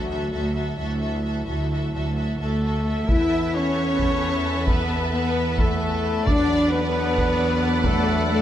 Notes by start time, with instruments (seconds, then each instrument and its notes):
Already playing: double bass section D2, cello section D2, french horn section F#3 F#4
0.10 viola section F#4, violin section A4 E5
0.33 double bass section D2, cello section D2, viola section F#4, violin section A4 E5
0.55 viola section F#4, violin section A4 E5
0.78 double bass section D2, cello section D2, french horn section E4, viola section F#4, violin section A4 E5
1.00 viola section F#4, violin section A4 E5
1.24 viola section F#4, violin section A4 E5
1.47 double bass section D2, cello section D2, viola section F#4, violin section A4 E5
1.71 viola section F#4, violin section A4 E5
1.93 double bass section D2, cello section D2, viola section F#4, violin section A4 E5
2.16 viola section F#4, violin section A4 E5
2.39 double bass section D2, cello section D2 A3, french horn section A3, viola section F#4, violin section A4 E5, trumpet A4
2.62 viola section F#4, violin section A4 E5
2.86 viola section F#4, violin section A4 E5
3.07 double bass section E2, trombone section E3 B3, cello section E4, french horn section E4, viola section A4 B4, violin section E5 A5, trumpet E5, taiko
3.53 cello section C#4, french horn section C#4, trumpet C#5, violin section C#5
3.99 taiko
4.67 cello section B3, french horn section B3, trumpet B4, violin section B4, taiko
5.11 french horn section B3, cello section B3, violin section B4, trumpet B4
5.58 french horn section A3, cello section A3, violin section A4, trumpet A4, taiko
6.25 double bass section E2, trombone section F#3 D4, cello section D4, french horn section D4, viola section A4 B4, violin section D5 F#5, trumpet D5, taiko
6.71 french horn section B3, cello section B3, violin section B4, trumpet B4
7.16 taiko
7.84 cello section A3, french horn section A3, violin section A4, trumpet A4, taiko
8.30 french horn section A3, cello section A3, violin section A4, trumpet A4